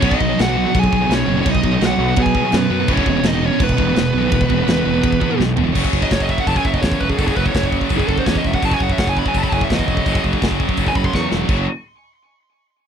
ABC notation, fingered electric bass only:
X:1
M:4/4
L:1/8
Q:1/4=167
K:Bmix
V:1 name="Fingered electric bass" clef=bass
B,,, B,,, B,,,2 B,,, B,,, B,,, F,,, | B,,, B,,, B,,, B,,, B,,2 F,, F,, | E,,, E,,, E,,,2 E,,, E,,, E,,, B,,, | E,,, E,,, E,,, E,,, E,,2 B,,, E,,, |
F,,, F,,, F,,,2 F,,, F,,, E,, E,,, | F,,, F,,, F,,,2 F,,, F,,, E,, E,,, | F,,, F,,, F,,,2 F,,, F,,, E,, E,,, | F,,, F,,, F,,,2 F,,, F,,, E,, E,,, |
F,,, z6 z |]